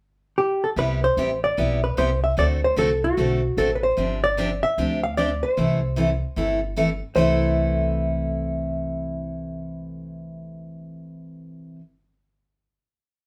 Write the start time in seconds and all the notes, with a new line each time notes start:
0.38 G4
0.64 A4
0.76 C2 C3 G3 B3 E4 G4 B4
1.04 C5
1.17 A1 C3 G3 B3 E4 G4
1.44 D5
1.57 B1 C3 G3 B3 E4 G4
1.84 B4
1.97 C2 C3 G3 B3 E4 G4 C5
2.24 E5
2.37 D2 D3 A3 C4 F#4 A4 D5
2.64 C5
2.76 C2 D3 A3 C4 F#4 A4
3.04 F#4
3.17 B1 D3 A3 C4 F#4 A4
3.57 A1 D3 A3 C4 F#4 A4
3.75 B4
3.83 C5
3.97 G1 C3 F3 C4 D4 G4
4.24 D5
4.37 C3 F3 C4 D4 G4
4.63 E5
4.78 D2 C3 F3 C4 D4 G4
5.03 F5
5.17 C3 F3 C4 D4 G4 D5
5.43 C5
5.57 C2 C3 E3 A3 E4 A4
5.96 C3 E3 A3 E4 A4
6.36 G1 C3 E3 A3 E4 A4
6.76 C3 E3 A3 E4 A4
7.15 C2 C3 E3 A3 E4 C5
7.19 A4